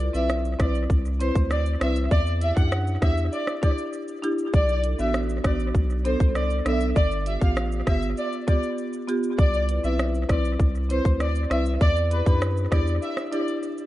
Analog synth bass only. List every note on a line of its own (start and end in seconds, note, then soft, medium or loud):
0.14 0.55 B1 medium
0.60 0.87 B1 loud
0.90 1.31 C2 loud
1.35 1.76 D2 loud
1.81 2.08 C2 loud
2.11 2.52 E2 loud
2.57 2.98 F#2 medium
3.02 3.29 E2 medium
4.54 4.95 B1 loud
4.99 5.40 A1 medium
5.44 5.72 A1 loud
5.75 6.16 B1 loud
6.20 6.61 C2 medium
6.66 6.93 B1 medium
6.96 7.37 G1 loud
7.41 7.82 A1 medium
7.87 8.14 G1 medium
9.38 9.79 C2 loud
9.84 10.25 B1 medium
10.29 10.57 B1 medium
10.60 11.01 C2 medium
11.05 11.46 D2 medium
11.51 11.78 C2 medium
11.81 12.22 E2 loud
12.26 12.67 F#2 medium
12.72 12.99 E2 loud